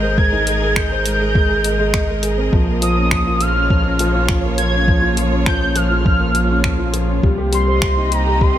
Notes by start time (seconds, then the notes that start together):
Already playing: G#1 G#3 D#4 G#4 A#4 C5 D#5 G6
0.03 C5
0.17 G#3 G#6, kick
0.33 D#4
0.47 G#3, closed hi-hat
0.62 G#4
0.76 G#3 G6, finger snap, kick
0.92 C5
1.06 G#3, closed hi-hat
1.20 G#4
1.35 G#3, kick
1.49 G#4
1.64 G#3, closed hi-hat
1.79 G#3
1.94 D#5, finger snap, kick
2.08 G#3
2.23 G#4, closed hi-hat
2.38 C4
2.53 A#1 F3 A#3, kick
2.65 A#3 F4
2.82 F3 D#6, closed hi-hat
2.96 C#4
3.11 F3, finger snap, kick
3.27 F4
3.38 F3 C#5 F6, closed hi-hat
3.56 C#4
3.70 F3, kick
3.85 C#4
3.99 F3, closed hi-hat
4.15 F4
4.29 F3, finger snap, kick
4.44 A#3
4.58 F3 G#6, closed hi-hat
4.73 C#4
4.88 F3, kick
5.02 F4
5.17 F3, closed hi-hat
5.32 C#4
5.46 F3 G6, finger snap, kick
5.61 C#4
5.76 F3 F6, closed hi-hat
5.91 F4
6.05 F3, kick
6.19 A#3
6.34 F3, closed hi-hat
6.49 C#4
6.64 F3, finger snap, kick
6.78 F4
6.94 F3, closed hi-hat
7.08 C#4
7.23 C2 C3 G3, kick
7.38 G4
7.50 G3 C4, closed hi-hat
7.54 C6
7.67 C5
7.73 D#5
7.82 G3 G4, finger snap, kick
7.97 D#4
8.11 G3 A#5, closed hi-hat
8.27 G4
8.41 G3 C6, kick